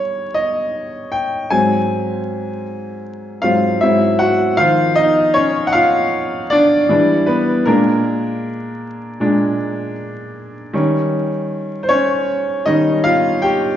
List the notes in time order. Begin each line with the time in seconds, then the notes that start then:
Already playing: D#3 G3 C#4 C#5
0.34 D#5
1.12 G5
1.50 G#2 F#3 C4 G#5
3.42 G#2 F#3 C4 F4 F5
3.81 G#2 F#3 C4 E4 E5
4.19 F#4 F#5
4.57 D#3 F3 F4 C5 F5
4.96 D#4 D#5
5.34 C#4 C#5
5.67 F#5
5.73 F4 F5
6.50 D4 D5
6.89 E3 G3 D4
7.26 B3 B4
7.66 A#2 G#3 A#3 D4 A#4
9.20 A#2 G#3 D4
10.73 D#3 G3 C#4
11.83 C5
11.89 C#4 C#5
12.66 D#3 G3 C#4 D#4 D#5
13.04 F4 F5
13.42 G4 G5